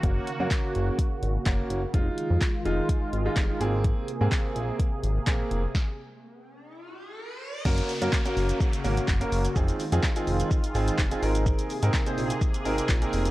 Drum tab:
CC |----------------|----------------|----------------|----------------|
HH |x-x-x-x-x-x-x-x-|x-x-x-x-x-x-x-x-|x-x-x-x-x-x-x-x-|----------------|
SH |----------------|----------------|----------------|----------------|
CP |----x-------x---|----x-------x---|----x-------x---|----------------|
SD |----o-------o---|----o-------o---|----o-------o---|o---------------|
BD |o---o---o---o---|o---o---o---o---|o---o---o---o---|o---------------|

CC |x---------------|----------------|----------------|
HH |-xox-xox-xox-xox|-xox-xox-xox-xox|-xox-xox-xox-xox|
SH |xxxxxxxxxxxxxxxx|xxxxxxxxxxxxxxxx|xxxxxxxxxxxxxxxx|
CP |----x-------x---|----x-------x---|----x-------x---|
SD |----o-------o---|----o-------o---|----o-------o---|
BD |o---o---o---o---|o---o---o---o---|o---o---o---o---|